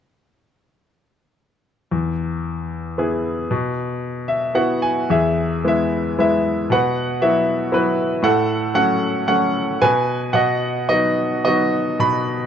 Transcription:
1.91 E2
2.98 B3 E4 G#4
3.51 B2
4.28 E5
4.55 B3 E4 F#4 F#5
4.82 G#5
5.10 E2 G#4 E5
5.64 G#3 B3 E4 E5
6.18 G#3 B3 E4 E5
6.70 B2 B4 F#5
7.21 F#3 B3 E4 E5
7.72 F#3 B3 E4 B4
8.22 A2 A4 F#5
8.74 F#3 A3 C#4 F#5
9.27 F#3 A3 C#4 F#5
9.82 B2 B4 G#5
10.33 B2 D#5 F#5
10.89 F#3 B3 D#4 D#5
11.45 F#3 B3 D#4 F#4 D#5
11.99 B2 B5

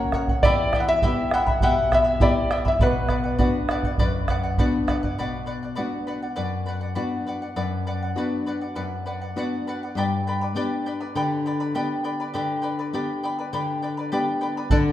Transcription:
Already playing: A#3 C#4 F#4 A#4 C#5 F#5
0.12 A#4 C#5 F#5, bombo rim, bombo low
0.28 C#5 F#5, bombo low
0.43 E2 E4 G4 D5 E5 G5 B5, bombo low
0.73 E4 E5 G5 B5, bombo rim, bombo low
0.80 F#5
0.88 E4 E5 B5
1.02 B3 E4 G4 E5 G5 B5, bombo low
1.31 E4 E5 F#5 G5 B5, bombo rim
1.47 E4 E5 B5, bombo low
1.61 B2 E4 G4 E5 F#5 G5 B5, bombo low
1.92 E4 E5 G5 B5, bombo rim, bombo low
2.04 E4 E5 B5
2.20 B3 E4 G4 D5 E5 G5 B5, bombo low
2.51 E4 E5 G5 B5, bombo rim
2.65 E4 E5 B5, bombo low
2.79 B2 B4 D5 F#5, bombo low
3.09 B4 D5 F#5, bombo rim, bombo low
3.24 D5 F#5
3.38 B3 D4 F#4 B4 D5 F#5, bombo low
3.69 B4 D5 F#5, bombo rim
3.83 D5 F#5, bombo low
3.98 F#2 B4 D5 F#5, bombo low
4.28 B4 D5 F#5, bombo rim, bombo low
4.43 D5 F#5
4.58 B3 D4 F#4 B4 D5 F#5, bombo low
4.87 B4 D5 F#5, bombo rim, bombo low
5.03 D5 F#5, bombo low
5.18 B2 B4 D5 F#5
5.46 B4 D5 F#5
5.63 D5 F#5
5.76 B3 D4 F#4 B4 D5 F#5
6.07 B4 D5 F#5
6.22 D5 F#5
6.36 F#2 B4 D5 F#5
6.66 B4 D5 F#5
6.81 D5 F#5
6.95 B3 D4 F#4 B4 D5 F#5
7.27 B4 D5 F#5
7.42 D5 F#5
7.56 F#2 B4 D5 F#5
7.87 B4 D5 F#5
8.02 D5 F#5
8.15 B3 D4 F#4 B4 D5 F#5
8.46 B4 D5 F#5
8.61 D5 F#5
8.75 F#2 B4 D5 F#5
9.06 B4 D5 F#5
9.21 D5 F#5
9.36 B3 D4 F#4 B4 D5 F#5
9.67 B4 D5 F#5
9.83 D5 F#5
9.95 G2 G4 B4 D5 G5 B5
10.27 B4 D5 G5 B5
10.41 B4 D5 B5
10.55 B3 D4 G4 B4 D5 G5 B5
10.86 B4 D5 G5 B5
11.00 B4 D5 B5
11.15 D3 G4 B4 D5 G5 B5
11.46 B4 D5 G5 B5
11.60 B4 D5 B5
11.75 B3 D4 G4 B4 D5 G5 B5
12.04 B4 D5 G5 B5
12.20 B4 D5 B5
12.34 D3 G4 B4 D5 G5 B5
12.62 B4 D5 G5 B5
12.79 B4 D5 B5
12.93 B3 D4 G4 B4 D5 G5 B5
13.23 B4 D5 G5 B5
13.39 B4 D5 B5
13.53 D3 G4 B4 D5 G5 B5
13.82 B4 D5 G5 B5
13.97 B4 D5 B5
14.12 B3 D4 G4 B4 D5 G5 B5
14.41 B4 D5 G5 B5
14.57 B4 D5 B5
14.70 D3 A4 D5 F#5, bombo low

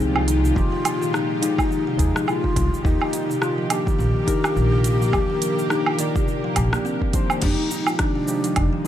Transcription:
Already playing: A#2 F3 G#3 C4 D#4 F4 G4 G#4
0.00 C2 D#4, cabasa
0.16 F4, low woodblock
0.27 D#3 D#4, closed hi-hat, cabasa
0.44 C3, cabasa
0.54 F2 F3 G#3 D#4 F4, kick, cabasa
0.58 G4
0.72 F3
0.85 F3, closed hi-hat, cabasa, low woodblock
1.02 D#3, cabasa
1.13 F3 D#4, cross-stick, cabasa
1.41 F3 G#3 D#4 G4, closed hi-hat, cabasa
1.58 F4, kick, cabasa, low woodblock
1.71 D#3, cabasa
1.87 C3
1.97 D#2 F3 G#3 D#4 G#4, kick, closed hi-hat, cabasa
2.16 F3, cross-stick, cabasa
2.28 F3 F4, cabasa, low woodblock
2.44 D#3, kick
2.56 C2 F3, kick, closed hi-hat, cabasa
2.74 cabasa
2.83 D#2 D#3 A#3 D#4 G4 A#4 D#5, kick, cabasa
3.01 F4, low woodblock
3.13 D#3, closed hi-hat, cabasa
3.30 C3, cabasa
3.42 F4, cross-stick, cabasa
3.58 F3
3.69 D#3 F3 A#3 D4 G4 G#4, closed hi-hat, cabasa, low woodblock
3.73 G4
3.87 D#3, kick, cabasa
3.99 A#1 F3, cabasa
4.26 D#3 A#3 D4 D#4 A#4, kick, closed hi-hat, cabasa
4.44 F4, cross-stick, cabasa, low woodblock
4.56 A#1 D#3, cabasa
4.72 C3
4.84 closed hi-hat, cabasa
5.01 F3, cabasa
5.11 D#2 D#3 F3 A#3 D4, kick, cabasa, low woodblock
5.15 G4
5.30 D#3
5.42 F3, closed hi-hat, cabasa
5.59 cabasa
5.70 D#4, cross-stick, cabasa
5.86 F4, low woodblock
5.98 D#3 A#3 G4 D5, closed hi-hat, cabasa
6.16 C3, kick, cabasa
6.28 cabasa
6.44 F3
6.55 A#1 D#3 F3 A#3 D4 G4, kick, closed hi-hat, cabasa, low woodblock
6.73 A#3, cross-stick, cabasa
6.85 C4, cabasa
7.02 kick
7.13 D#3 F3 A#3 D4 C5, kick, closed hi-hat, cabasa
7.30 cabasa, low woodblock
7.41 F2 F3 G#3 D#4 G4, kick, closed hi-hat, crash, cabasa
7.45 G4
7.71 D#4, cabasa
7.87 F4, cabasa, low woodblock
7.98 D#3 D4, kick, cross-stick, closed hi-hat, cabasa
8.15 C3
8.27 F3 G#3 D#4 G4, cabasa
8.44 F3, closed hi-hat, cabasa
8.56 F1 F3, kick, closed hi-hat, cabasa, low woodblock
8.73 D#3
8.84 F3

